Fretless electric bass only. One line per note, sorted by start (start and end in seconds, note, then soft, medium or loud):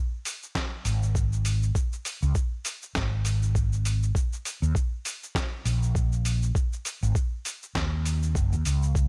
0.85 1.70 G#1 medium
2.22 2.32 C#2 medium
2.95 4.10 G#1 medium
4.62 4.72 D#2 medium
5.65 6.50 A#1 medium
7.03 7.12 G#1 medium
7.75 8.35 D#2 medium
8.35 8.54 F#1 loud
8.52 8.62 D#2 medium
8.66 9.08 C#2 loud